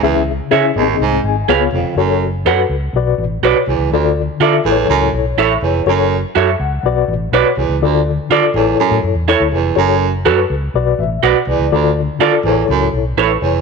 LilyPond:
<<
  \new Staff \with { instrumentName = "Clean electric guitar" } { \time 4/4 \key des \lydian \tempo 4 = 123 r4 <aes' des'' fes''>16 r4. r16 <aes' ces'' f''>16 r8. | \key a \major r4 <a' cis'' fis''>16 r4. r16 <fis' b' d''>16 r8. | r4 <f' a' d''>16 r4. r16 <e' a' cis''>16 r8. | r4 <fis' a' cis''>16 r4. r16 <fis' b' d''>16 r8. |
r4 <f' a' d''>16 r4. r16 <e' a' cis''>16 r8. | r4 <fis' a' cis''>16 r4. r16 <fis' b' d''>16 r8. | r4 <f' a' d''>16 r4. r16 <e' a' cis''>16 r8. | }
  \new Staff \with { instrumentName = "Reed electric piano" } { \time 4/4 \key des \lydian << { r2 r8 aes''8 f''4 | \key a \major r1 | r2 r8 cis''8 e''8 cis''8~ | cis''8 r8 e''8 fis''4 r4. |
r1 | r2 r8 e''8 fis''8 d''8~ | d''8 r2 r8 b'8 cis''8 | } \\ { <des' fes' aes' fes''>8 r8 <des' fes' aes' fes''>8 <ces' c' ees' aes' ees''>4 r8 <ces' f' aes' des''>8 r8 | <fis' a' cis''>8 r8 <fis' a' b'>8 r8 <fis' b' d''>8 r8 <fis' b' cis''>8 r8 | <f' a' d''>8 r8 <f' a' e''>8 <e' a' b' cis''>4 r4. | <fis' a' cis''>8 r4. <fis' b' d''>8 r8 <fis' b' cis''>8 r8 |
<f' a' d''>8 r8 <f' a' d''>8 <e' a' cis''>4 r8 <e' a' cis''>8 r8 | <fis' a' cis''>8 r8 <fis' a' b'>8 r8 <fis' b' d''>8 r4. | <f' a' d''>8 r8 <f' a' d''>8 <e' a' c'' cis''>4 r4. | } >> }
  \new Staff \with { instrumentName = "Reed electric piano" } { \clef bass \time 4/4 \key des \lydian des4. aes,4. des4 | \key a \major r2 b,4. r8 | d4. a,4. r4 | r2 b,4. r8 |
d4. a,4. r4 | r2 b,4. r8 | d4. a,4. r4 | }
  \new Staff \with { instrumentName = "Baritone saxophone" } { \clef bass \time 4/4 \key des \lydian fes,8 r4 ees,8 aes,8 r4 f,8 | \key a \major fis,8. r2 r8. e,8 | d,8 r4 e,8 fis,8 r4 e,8 | fis,8. r2 r8. e,8 |
d,8 r4 e,8 fis,8 r4 e,8 | fis,8. r2 r8. e,8 | d,8 r4 e,8 fis,8 r4 e,8 | }
  \new Staff \with { instrumentName = "Fingered electric bass" } { \clef bass \time 4/4 \key des \lydian des,4 des8 aes,,8 c,8 aes,,8 des,8 f,,16 r16 | \key a \major fis,,4 fis,8 cis,8 b,,8 a,,8 b,,16 r16 c,16 cis,16 | d,4 d8 a,,8 cis,8 b,,8 a,,8 f,,8 | fis,,4 fis,8 cis,8 b,,8 a,,8 b,,16 r16 c,16 cis,16 |
d,4 d8 a,,8 r16 a,16 fis,16 e,8 d,16 f,,8 | fis,,4 fis,8 cis,8 b,,8 a,,8 b,,16 r16 c,16 cis,16 | d,4 d8 a,,8 cis,8 b,,8 a,,8 f,,8 | }
>>